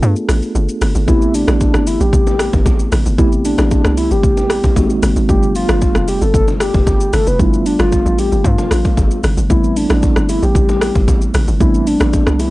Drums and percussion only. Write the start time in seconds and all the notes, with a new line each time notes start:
0.03 shaker
0.16 shaker
0.29 cross-stick, open hi-hat, shaker
0.42 shaker
0.55 shaker
0.69 shaker
0.81 cross-stick, open hi-hat, shaker
0.95 shaker
1.08 kick, low conga, shaker
1.22 shaker
1.34 open hi-hat, shaker
1.48 cross-stick, low bongo, shaker
1.60 kick, high bongo, shaker
1.74 cross-stick, shaker
1.87 open hi-hat, high bongo, shaker
2.01 shaker
2.13 kick, low conga, shaker
2.27 low bongo, shaker
2.39 cross-stick, open hi-hat, shaker
2.53 kick, low bongo, shaker
2.66 kick, high bongo, shaker
2.79 shaker
2.92 cross-stick, open hi-hat, low bongo, low conga, shaker
3.06 shaker
3.18 kick, low conga, shaker
3.32 shaker
3.45 open hi-hat, shaker
3.58 cross-stick, low bongo, shaker
3.71 kick, high bongo, shaker
3.85 cross-stick, shaker
3.97 open hi-hat, high bongo, shaker
4.11 shaker
4.23 kick, low conga, shaker
4.37 low bongo, shaker
4.50 cross-stick, open hi-hat, shaker
4.64 kick, low bongo, shaker
4.76 kick, high bongo, shaker
4.90 shaker
5.03 cross-stick, open hi-hat, low bongo, low conga, shaker
5.16 shaker
5.29 kick, low conga, shaker
5.43 shaker
5.55 open hi-hat, shaker
5.69 cross-stick, low bongo, shaker
5.81 kick, high bongo, shaker
5.95 cross-stick, shaker
6.08 open hi-hat, high bongo, shaker
6.22 shaker
6.34 kick, low conga, shaker
6.48 low bongo, shaker
6.60 cross-stick, open hi-hat, shaker
6.74 kick, low bongo, shaker
6.87 kick, high bongo, shaker
7.00 shaker
7.13 cross-stick, open hi-hat, low bongo, low conga, shaker
7.27 shaker
7.39 kick, low conga, shaker
7.53 shaker
7.66 open hi-hat, shaker
7.79 cross-stick, low bongo, shaker
7.92 kick, high bongo, shaker
8.06 shaker
8.18 open hi-hat, high bongo, shaker
8.32 shaker
8.44 kick, low conga, shaker
8.58 low bongo, shaker
8.71 cross-stick, open hi-hat, shaker
8.85 kick, low bongo, shaker
8.97 kick, high bongo, shaker
9.11 shaker
9.24 cross-stick, open hi-hat, low bongo, low conga, shaker
9.37 shaker
9.50 kick, low conga, shaker
9.64 shaker
9.76 open hi-hat, shaker
9.90 cross-stick, low bongo, shaker
10.03 kick, high bongo, shaker
10.16 cross-stick, shaker
10.29 open hi-hat, high bongo, shaker
10.43 shaker
10.55 kick, low conga, shaker
10.69 low bongo, shaker
10.81 cross-stick, open hi-hat, shaker
10.95 kick, low bongo, shaker
11.08 kick, high bongo, shaker
11.21 shaker
11.34 cross-stick, open hi-hat, low bongo, low conga, shaker
11.48 shaker
11.60 kick, low conga, shaker
11.74 shaker
11.87 open hi-hat, shaker
12.00 cross-stick, low bongo, shaker
12.13 kick, high bongo, shaker
12.27 cross-stick, shaker
12.39 open hi-hat, high bongo, shaker